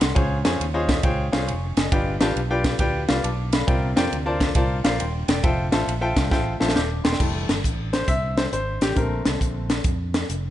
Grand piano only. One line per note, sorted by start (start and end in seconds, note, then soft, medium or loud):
0.00 0.43 F#5 medium
0.00 0.43 C6 medium
0.15 0.85 C#3 medium
0.15 0.37 F4 medium
0.15 0.37 G#4 medium
0.15 0.37 C5 medium
0.15 0.37 C#5 medium
0.15 0.37 G#5 loud
0.45 0.63 F4 medium
0.45 0.63 G#4 medium
0.45 0.63 C5 medium
0.45 0.63 C#5 medium
0.45 0.63 G#5 medium
0.74 0.98 F4 medium
0.74 0.98 G#4 medium
0.74 0.98 C5 medium
0.74 0.98 C#5 medium
0.74 0.98 D#5 loud
1.03 1.25 F4 medium
1.03 1.25 G#4 medium
1.03 1.25 C5 medium
1.03 1.25 C#5 medium
1.03 1.25 G5 loud
1.32 1.51 F4 medium
1.32 1.51 G#4 medium
1.32 1.51 C5 medium
1.32 1.51 C#5 medium
1.32 1.48 F5 medium
1.48 1.76 G#5 medium
1.48 1.75 C#6 medium
1.77 2.19 D#5 medium
1.77 2.19 G#5 medium
1.92 2.61 G2 medium
1.92 2.13 F4 medium
1.92 2.13 G4 medium
1.92 2.13 B4 medium
1.92 2.13 D5 medium
1.92 2.13 G5 medium
2.21 2.39 F4 medium
2.21 2.39 G4 medium
2.21 2.39 B4 medium
2.21 2.39 D5 medium
2.21 2.39 A5 medium
2.51 2.74 F4 medium
2.51 2.74 G4 medium
2.51 2.74 B4 medium
2.51 2.74 D5 medium
2.51 2.74 G5 loud
2.79 3.01 F4 medium
2.79 3.01 G4 medium
2.79 3.01 B4 medium
2.79 3.01 D5 medium
2.79 3.01 G5 loud
3.08 3.27 F4 medium
3.08 3.27 G4 medium
3.08 3.27 B4 medium
3.08 3.27 D5 medium
3.08 3.24 F5 medium
3.23 3.51 A5 medium
3.23 3.51 D6 medium
3.53 3.95 F5 medium
3.53 3.94 B5 medium
3.67 4.36 C3 medium
3.67 3.89 F4 medium
3.67 3.89 A#4 medium
3.67 3.89 C5 medium
3.67 3.89 D5 medium
3.67 3.89 G5 medium
3.96 4.15 F4 medium
3.96 4.14 A#4 medium
3.96 4.14 C5 medium
3.96 4.14 D5 medium
3.96 4.15 G5 loud
4.26 4.50 F4 medium
4.26 4.50 A#4 medium
4.26 4.50 C5 medium
4.26 4.50 D5 medium
4.26 4.50 A5 loud
4.56 4.77 F4 medium
4.56 4.77 A#4 medium
4.56 4.77 C5 medium
4.56 4.77 D5 medium
4.56 4.77 A5 loud
4.84 5.02 F4 medium
4.84 5.03 A#4 medium
4.84 5.03 C5 medium
4.84 5.00 D5 medium
4.84 5.00 F5 medium
4.99 5.27 G5 medium
4.99 5.27 C6 medium
5.28 5.71 D5 medium
5.28 5.42 G5 medium
5.43 5.65 F4 medium
5.43 5.65 A4 medium
5.43 5.65 C5 medium
5.43 5.65 E5 medium
5.43 5.65 G5 medium
5.72 5.90 F4 medium
5.72 5.90 A4 medium
5.72 5.91 C5 medium
5.72 5.90 E5 medium
5.72 5.91 A5 medium
6.01 6.25 F4 medium
6.01 6.25 A4 medium
6.01 6.25 C5 medium
6.01 6.25 E5 medium
6.01 6.26 G5 loud
6.31 6.53 F4 medium
6.31 6.53 A4 medium
6.31 6.53 C5 medium
6.31 6.53 E5 medium
6.31 6.53 G5 loud
6.60 6.79 F4 medium
6.60 6.79 A4 medium
6.60 6.79 C5 medium
6.60 6.79 E5 medium
6.60 6.76 A5 medium
6.75 7.03 D6 medium
6.75 7.03 G6 medium
7.04 7.47 G5 medium
7.04 7.46 C6 medium
7.19 7.53 E3 soft
7.19 7.53 G3 soft
7.19 7.54 A3 medium
7.93 8.09 C5 medium
8.08 8.38 E5 medium
8.37 8.42 C5 medium
8.53 8.83 C5 medium
8.82 8.97 G4 medium
8.95 9.66 D3 medium
8.95 9.66 A3 soft
8.95 9.66 C4 medium
8.95 9.24 A#4 medium